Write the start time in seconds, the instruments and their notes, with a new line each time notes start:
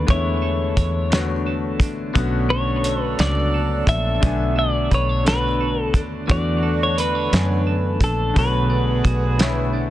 Already playing: grand piano D3 G#3 A3 B3 C#4 F#4 C#5 G#5, clean electric guitar D4 A4 C#5
0.07 fingered electric bass E2, grand piano D3 G#3 B3, clean electric guitar E3 C#5, kick, closed hi-hat
0.11 grand piano A3 E4 C#5
0.42 clean electric guitar A4
0.77 fingered electric bass E2, clean electric guitar C#5, kick, closed hi-hat
1.10 grand piano D3 A3 B3 C#5, clean electric guitar D4, snare, closed hi-hat
1.16 grand piano F#4
1.46 clean electric guitar A4
1.80 fingered electric bass A#1, clean electric guitar D4, kick, closed hi-hat
2.14 fingered electric bass B1, grand piano D3 A3 B3 C#4, horn section F#3 D4 A4, clean electric guitar B3, kick, closed hi-hat
2.19 grand piano F#4
2.50 clean electric guitar A4 C#5
2.84 clean electric guitar C#5, closed hi-hat
3.03 clean electric guitar B4
3.17 fingered electric bass C#2, grand piano A3 B3 D4, clean electric guitar D4 D5, snare, closed hi-hat
3.23 grand piano F#4
3.54 clean electric guitar A4
3.87 fingered electric bass A#1, clean electric guitar D4 E5, kick, closed hi-hat
4.20 fingered electric bass B1, grand piano D3 A3 B3, clean electric guitar B3, kick, closed hi-hat
4.25 grand piano D4 G#5
4.56 clean electric guitar A4 D5
4.91 fingered electric bass B1, clean electric guitar B4 C#5, kick, closed hi-hat
5.09 clean electric guitar C#5
5.23 grand piano D3 A3 B3 C#5, clean electric guitar D4, closed hi-hat
5.28 grand piano F#4, clean electric guitar B4, snare
5.60 clean electric guitar A4
5.81 clean electric guitar A4
5.94 fingered electric bass D#2, clean electric guitar D4, kick, closed hi-hat
6.27 fingered electric bass E2, grand piano D3 A3 B3 D4, horn section D3 D4 F#4, clean electric guitar E3 D5, kick, closed hi-hat
6.33 grand piano F#4
6.63 clean electric guitar A4
6.83 clean electric guitar C#5
6.98 clean electric guitar B4, closed hi-hat
7.15 clean electric guitar C#5
7.30 fingered electric bass F#2, grand piano D3 A3 B3, clean electric guitar D4, closed hi-hat
7.34 grand piano C#5 G#5, snare
7.67 clean electric guitar A4
8.01 fingered electric bass A#1, clean electric guitar D4 A4, kick, closed hi-hat
8.34 fingered electric bass B1, clean electric guitar B2, grand piano D3 A3 B3 C#5, horn section D3 B3 G#4, kick, closed hi-hat
8.38 grand piano F#4, clean electric guitar B4
8.70 clean electric guitar D4
9.04 fingered electric bass B1, clean electric guitar F#4, kick, closed hi-hat
9.38 grand piano D3 A3 B3, clean electric guitar A3, snare, closed hi-hat
9.42 grand piano E4 C#5
9.73 clean electric guitar D4